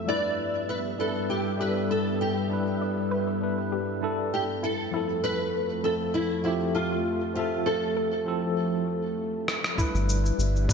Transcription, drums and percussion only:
9.48 cross-stick medium
9.64 cross-stick medium
9.78 kick loud
9.78 shaker soft
9.95 shaker soft
10.09 shaker medium
10.26 shaker soft
10.40 shaker soft
10.56 shaker soft
10.69 kick loud
10.69 shaker medium

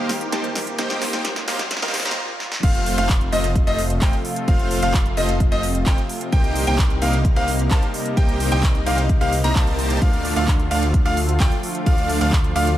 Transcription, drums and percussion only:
0.09 snare medium
0.09 open hi-hat loud
0.21 closed hi-hat medium
0.32 snare medium
0.32 closed hi-hat medium
0.44 closed hi-hat soft
0.55 snare medium
0.55 open hi-hat loud
0.67 closed hi-hat medium
0.78 snare medium
0.78 closed hi-hat medium
0.90 snare medium
1.02 snare medium
1.02 open hi-hat loud
1.13 snare medium
1.13 closed hi-hat soft
1.25 snare loud
1.25 closed hi-hat medium
1.36 snare medium
1.36 closed hi-hat soft
1.48 snare loud
1.48 open hi-hat medium
1.59 snare medium
1.59 closed hi-hat medium
1.71 snare loud
1.71 closed hi-hat medium
1.77 snare medium
1.82 snare medium
1.88 snare medium
1.94 snare loud
1.94 open hi-hat loud
2.00 snare medium
2.05 snare medium
2.11 snare medium
2.40 snare medium
2.52 snare medium
2.63 kick loud
2.63 closed hi-hat medium
2.63 crash loud
2.75 closed hi-hat soft
2.86 open hi-hat loud
2.98 closed hi-hat medium
3.09 kick loud
3.09 clap loud
3.09 closed hi-hat medium
3.21 closed hi-hat soft
3.32 open hi-hat medium
3.44 closed hi-hat medium
3.56 kick loud
3.56 closed hi-hat medium
3.67 closed hi-hat soft
3.79 open hi-hat loud
3.90 closed hi-hat medium
4.02 kick loud
4.02 clap loud
4.02 closed hi-hat medium
4.13 closed hi-hat soft
4.25 open hi-hat medium
4.36 closed hi-hat medium
4.48 kick loud
4.48 closed hi-hat medium
4.59 closed hi-hat soft
4.71 open hi-hat loud
4.83 closed hi-hat medium
4.94 kick loud
4.94 clap loud
4.94 closed hi-hat medium
5.06 closed hi-hat soft
5.17 open hi-hat loud
5.29 closed hi-hat medium
5.40 kick loud
5.40 closed hi-hat medium
5.52 closed hi-hat soft
5.63 open hi-hat loud
5.75 closed hi-hat medium
5.86 kick loud
5.86 clap loud
5.86 closed hi-hat medium
5.98 closed hi-hat soft
6.09 open hi-hat medium
6.21 closed hi-hat medium
6.32 kick loud
6.32 closed hi-hat medium
6.44 closed hi-hat soft
6.56 open hi-hat loud
6.67 closed hi-hat medium
6.79 kick loud
6.79 clap loud
6.79 closed hi-hat medium
6.90 closed hi-hat soft
7.02 open hi-hat medium
7.13 closed hi-hat medium
7.25 kick loud
7.25 closed hi-hat medium
7.36 closed hi-hat soft
7.48 open hi-hat loud
7.59 closed hi-hat soft
7.71 kick loud
7.71 clap loud
7.71 closed hi-hat medium
7.83 closed hi-hat soft
7.94 open hi-hat loud
8.06 closed hi-hat soft
8.17 kick loud
8.17 closed hi-hat medium
8.29 closed hi-hat soft
8.40 open hi-hat loud
8.52 closed hi-hat soft
8.63 kick loud
8.63 clap loud
8.63 closed hi-hat medium
8.75 closed hi-hat soft
8.86 open hi-hat medium
8.98 closed hi-hat soft
9.09 kick loud
9.09 closed hi-hat soft
9.21 closed hi-hat soft
9.33 open hi-hat loud
9.44 closed hi-hat medium
9.56 kick loud
9.56 clap loud
9.56 closed hi-hat medium
9.67 closed hi-hat soft
9.79 open hi-hat loud
9.90 closed hi-hat medium
10.02 kick loud
10.02 closed hi-hat soft
10.13 closed hi-hat soft
10.25 open hi-hat loud
10.36 closed hi-hat soft
10.48 kick loud
10.48 clap loud
10.48 closed hi-hat medium
10.59 closed hi-hat soft
10.71 open hi-hat medium
10.83 closed hi-hat soft
10.94 kick loud
10.94 closed hi-hat medium
11.06 closed hi-hat soft
11.17 open hi-hat loud
11.29 closed hi-hat soft
11.40 kick loud
11.40 clap loud
11.40 closed hi-hat medium
11.52 closed hi-hat soft
11.63 open hi-hat medium
11.75 closed hi-hat medium
11.86 kick loud
11.86 closed hi-hat medium
11.98 closed hi-hat soft
12.09 open hi-hat loud
12.21 closed hi-hat medium
12.32 kick loud
12.32 clap loud
12.32 closed hi-hat medium
12.44 closed hi-hat soft
12.56 open hi-hat medium
12.67 closed hi-hat medium

